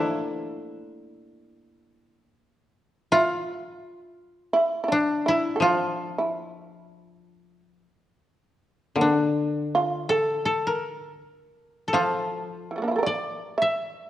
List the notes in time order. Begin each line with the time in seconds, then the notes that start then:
Already playing: A3 A#3 D4 E4
0.11 E4
3.12 E4 F4
3.45 F4
4.53 E4
4.84 E4
4.88 D4
5.26 E4
5.56 A4
5.60 F3 F4
6.19 E4
8.95 D3 A#3
9.01 D4
9.20 D4
9.75 F4
10.09 A4
10.45 A4
10.67 A#4
11.88 A4
11.93 F3 F4
12.71 E3
12.76 F3 A3
12.82 A#3 D4
12.88 E4 F4
12.96 A4 A#4
13.03 D5
13.58 E5
13.62 E5